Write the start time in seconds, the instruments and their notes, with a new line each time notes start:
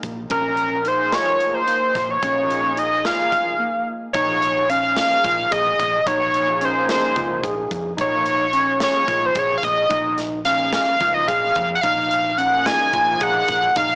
Already playing: tine electric piano A#3
0.03 fingered electric bass A#1, kick, closed hi-hat
0.30 fingered electric bass A#1, tine electric piano C#4, analog synth lead A#4, kick, closed hi-hat
0.57 closed hi-hat
0.85 analog synth pad F3 A#3 D#4 G#4, tine electric piano D#4, analog synth lead C5, closed hi-hat
1.13 tine electric piano F4, analog synth lead C#5, snare, closed hi-hat
1.39 analog synth pad F3 A#3 D#4 A#4, closed hi-hat
1.54 analog synth lead C5
1.68 tine electric piano A#3, closed hi-hat
1.95 fingered electric bass A#1, kick, snare, closed hi-hat
2.11 analog synth lead C#5
2.21 fingered electric bass A#1, analog synth pad F3 A#3 D#4 G#4, tine electric piano C#4, kick, closed hi-hat
2.51 closed hi-hat
2.77 tine electric piano D#4, analog synth lead D#5, closed hi-hat
3.03 analog synth pad F3 A#3 D#4 G#4, tine electric piano F4, analog synth lead F5, snare, closed hi-hat
3.32 kick, closed hi-hat
3.59 tine electric piano A#3
4.13 fingered electric bass A#1, analog synth pad F3 A#3 D#4 G#4, tine electric piano D#4, analog synth lead C#5, kick, closed hi-hat
4.42 closed hi-hat
4.70 tine electric piano C#4, analog synth lead F5, closed hi-hat
4.96 analog synth pad F3 A#3 D#4 G#4, analog synth lead F5, snare, closed hi-hat
5.24 fingered electric bass A#1, tine electric piano F4, kick, closed hi-hat
5.51 fingered electric bass A#1, tine electric piano G#4, analog synth lead D#5, kick, closed hi-hat
5.80 fingered electric bass A#1, kick, closed hi-hat
6.06 fingered electric bass A#1, tine electric piano D#4, analog synth lead C#5, kick, closed hi-hat
6.33 analog synth pad F3 A#3 D#4 G#4, closed hi-hat
6.61 tine electric piano C#4, analog synth lead C5, closed hi-hat
6.89 analog synth lead C5, snare, closed hi-hat
7.16 fingered electric bass C#2, analog synth pad F3 A#3 D#4 G#4, tine electric piano F4, kick, closed hi-hat
7.43 fingered electric bass A#1, tine electric piano G#4, kick, closed hi-hat
7.71 fingered electric bass F2, kick, closed hi-hat
7.97 fingered electric bass A#1, analog synth pad F3 A#3 D#4 F4, tine electric piano D#4, analog synth lead C#5, kick, closed hi-hat
8.26 closed hi-hat
8.53 tine electric piano C#4, closed hi-hat
8.80 analog synth pad F3 A#3 D#4 G#4, analog synth lead C#5, snare, closed hi-hat
9.08 fingered electric bass A#1, tine electric piano F4, kick, closed hi-hat
9.26 analog synth lead C5
9.35 fingered electric bass A#1, tine electric piano G#4, analog synth lead C#5, kick, closed hi-hat
9.58 analog synth lead F5
9.63 fingered electric bass A#1, analog synth lead D#5, kick, closed hi-hat
9.89 fingered electric bass A#1, tine electric piano D#4, kick, closed hi-hat
10.18 snare, closed hi-hat
10.45 analog synth pad F3 A#3 D#4 G#4, tine electric piano C#4, analog synth lead F5, snare, closed hi-hat
10.72 analog synth lead F5, snare, closed hi-hat
11.00 fingered electric bass C#2, analog synth pad F3 A#3 D#4 F4, tine electric piano F4, kick, closed hi-hat
11.14 analog synth lead D#5
11.28 fingered electric bass A#1, tine electric piano G#4, analog synth lead F5, kick, closed hi-hat
11.55 fingered electric bass F2, kick, closed hi-hat
11.75 analog synth lead F#5
11.81 fingered electric bass A#1, tine electric piano D#4, analog synth lead F5, kick, closed hi-hat
12.11 closed hi-hat
12.38 analog synth pad F3 A#3 D#4 G#4, tine electric piano C#4, analog synth lead F#5, closed hi-hat
12.66 analog synth lead G#5, snare, closed hi-hat
12.93 fingered electric bass A#1, analog synth pad F3 A#3 D#4 G#4, tine electric piano F4, kick, closed hi-hat
13.21 fingered electric bass A#1, tine electric piano G#4, analog synth lead F#5, kick, closed hi-hat
13.48 fingered electric bass A#1, kick, closed hi-hat
13.76 fingered electric bass A#1, tine electric piano D#4, analog synth lead F5, kick, closed hi-hat